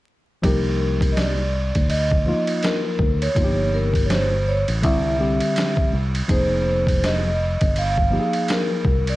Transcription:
0.42 fingered electric bass C2, tine electric piano F3 A#3 D#4 G4, vibraphone A#4, kick, ride
1.01 kick, ride
1.12 vibraphone D#5
1.17 vibraphone D5, snare, hi-hat pedal, ride
1.75 fingered electric bass D2, kick, ride
1.90 vibraphone D#5, ride
2.12 kick
2.26 tine electric piano F3 A#3 D#4 F4
2.47 ride
2.63 vibraphone A#4, snare, hi-hat pedal, ride
2.99 fingered electric bass D2, kick
3.22 vibraphone C#5, ride
3.35 fingered electric bass G1, tine electric piano F3 A#3 D#4 F4, kick, ride
3.44 tine electric piano G4
3.74 vibraphone A#4
3.94 kick, ride
4.06 vibraphone C#5
4.10 vibraphone C5, snare, hi-hat pedal, ride
4.48 vibraphone C#5
4.68 fingered electric bass A1, ride
4.82 fingered electric bass C2, tine electric piano D3 G3 C4 E4, vibraphone E5, kick, ride
5.18 tine electric piano D3 G3 C4 G4
5.40 ride
5.56 snare, hi-hat pedal, ride
5.77 kick
5.93 fingered electric bass C2
6.15 ride
6.28 fingered electric bass F1, tine electric piano F3 A#3 D#4 G#4, vibraphone C5, kick, ride
6.87 kick, ride
7.04 vibraphone D#5, snare, hi-hat pedal, ride
7.61 fingered electric bass G1, kick, ride
7.76 vibraphone F5, ride
7.98 kick
8.10 tine electric piano F3 A#3 D#4 G4
8.20 tine electric piano G#4
8.33 ride
8.48 vibraphone A#4, snare, hi-hat pedal, ride
8.85 fingered electric bass C2, kick
9.07 vibraphone D5, ride

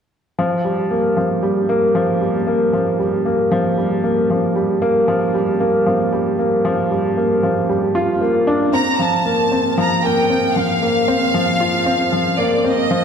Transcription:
0.39 upright piano F3
0.65 upright piano G3
0.91 upright piano A#3
1.17 upright piano F3
1.43 upright piano G3
1.69 upright piano A#3
1.95 upright piano F3
2.21 upright piano G3
2.47 upright piano A#3
2.73 upright piano F3
2.99 upright piano G3
3.25 upright piano A#3
3.51 upright piano F3
3.77 upright piano G3
4.04 upright piano A#3
4.30 upright piano F3
4.56 upright piano G3
4.82 upright piano A#3
5.08 upright piano F3
5.34 upright piano G3
5.60 upright piano A#3
5.86 upright piano F3
6.12 upright piano G3
6.39 upright piano A#3
6.65 upright piano F3
6.91 upright piano G3
7.17 upright piano A#3
7.43 upright piano F3
7.69 upright piano G3
7.95 upright piano F4
8.21 upright piano A#3
8.47 upright piano D4
8.73 upright piano C4, violin section A#5
8.99 upright piano F3, violin section A5
9.26 upright piano A#3
9.52 upright piano C4
9.78 upright piano F3, violin section A#5
10.04 upright piano A#3, violin section G5
10.30 upright piano C4
10.56 upright piano F3, violin section F5
10.82 upright piano A#3
11.08 upright piano C4
11.34 upright piano F3
11.60 upright piano F4
11.86 upright piano C4
12.12 upright piano F3
12.38 upright piano A#3, violin section D5
12.64 upright piano C4, violin section D#5
12.91 upright piano F3

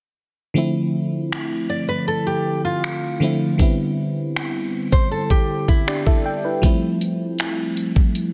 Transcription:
0.54 fm electric piano D3 F3 A3 C4 E4
1.32 finger snap
1.70 nylon-string guitar D5
1.89 nylon-string guitar B4
2.08 nylon-string guitar A4
2.27 nylon-string guitar G4
2.65 nylon-string guitar F4
2.84 finger snap
3.20 fm electric piano D3 F3 A3 C4 E4
3.58 fm electric piano D3 G3 B3 C4 E4, kick
4.36 finger snap
4.92 nylon-string guitar C5, kick
5.11 nylon-string guitar A4
5.30 nylon-string guitar G4, kick
5.68 nylon-string guitar E4, kick
5.88 fm electric piano D4 G4 D5, finger snap
6.07 fm electric piano E4 A4 E5, kick
6.26 fm electric piano G5
6.45 fm electric piano E4 B4
6.62 fm electric piano F3 G3 A3 C4 E4, kick, closed hi-hat
7.01 closed hi-hat
7.38 finger snap, closed hi-hat
7.77 closed hi-hat
7.96 kick
8.15 closed hi-hat

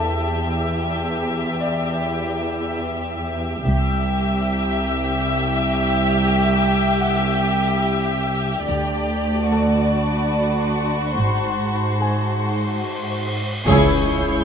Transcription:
Already playing: cello section E2, violin section G4 E5, grand piano A4 A5 D6
1.60 grand piano D5
3.66 double bass section C2, cello section C2, violin section G4 E5
7.00 grand piano F#5
8.66 cello section D2, double bass section D2, violin section D5 A5
9.51 violin section F#4 B5, grand piano A4 A5
10.37 violin section C6
11.16 double bass section G#1, cello section G#2, violin section C5, cymbal swell
12.00 grand piano G#4 G#5
12.30 violin section C6
13.66 cello section C#2 C#3, double bass section C#2, viola section E4, violin section G#4 C#5 C#6 G6, impact
14.09 cello section C#3

